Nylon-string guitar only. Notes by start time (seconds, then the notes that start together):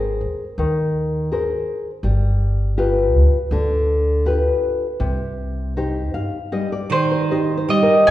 Already playing: G#4 A#4 C5
0.59 D#3
1.32 G#4 A#4 C5
2.04 G3
2.78 F4 G4 B4
3.52 D3
4.26 F4 G4 B4
5.00 C3
5.77 D#4 G4 C5
6.14 F5
6.52 G3 D#5
6.72 D5
7.11 C5
7.31 D#4 G4 C5 D#5
7.57 C5
7.83 A#4